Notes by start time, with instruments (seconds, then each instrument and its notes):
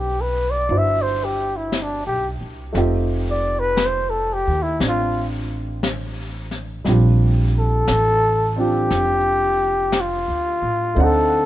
Already playing: upright bass B1, grand piano G3 C4 D4 E4 B4
0.00 muted trumpet G4
0.21 muted trumpet B4
0.51 muted trumpet D5
0.69 upright bass G1, grand piano D4 E4 F#4 C5, brush sweep
0.78 muted trumpet E5
1.02 muted trumpet C5
1.25 muted trumpet G4
1.56 muted trumpet E4
1.72 brush sweep, snare, hi-hat pedal
1.82 muted trumpet D4
2.07 upright bass B1, muted trumpet G4
2.41 upright bass C2
2.73 upright bass F1, grand piano A3 C4 D#4, brush sweep, snare
2.77 grand piano F4 G4
3.31 muted trumpet D5
3.59 muted trumpet B4
3.77 brush sweep, snare, hi-hat pedal
3.86 muted trumpet C5
4.10 muted trumpet A4
4.34 muted trumpet G4
4.47 upright bass D#2
4.63 muted trumpet E4
4.80 upright bass A1, grand piano C4 D4, brush sweep, snare
4.88 muted trumpet F4
5.83 brush sweep, snare, hi-hat pedal
6.51 snare
6.84 upright bass A#1, grand piano G3 C4 D4 F4, brush sweep, snare
6.89 grand piano G4
7.59 muted trumpet A4
7.88 upright bass A1, brush sweep, snare, hi-hat pedal
8.56 grand piano C4 D4 F4, muted trumpet G4
8.90 upright bass F1, brush sweep, snare
9.92 brush sweep, snare, hi-hat pedal
10.01 muted trumpet F4
10.28 upright bass D2
10.62 upright bass A2
10.95 upright bass D2, grand piano A3 C4 D4 D#4, brush sweep
11.00 muted trumpet A4, grand piano F#5